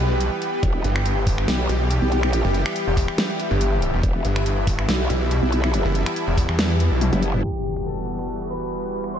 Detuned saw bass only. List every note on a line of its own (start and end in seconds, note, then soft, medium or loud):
0.00 0.30 B1 medium
0.84 1.47 G1 loud
1.69 2.00 B1 loud
2.45 2.64 F#1 loud
2.87 3.07 E1 medium
3.51 3.92 G1 loud
3.94 4.02 E1 loud
4.25 4.87 G1 loud
5.10 5.41 B1 medium
5.85 6.04 F#1 loud
6.27 6.47 E1 loud
6.49 6.90 E2 loud
6.91 7.11 B1 loud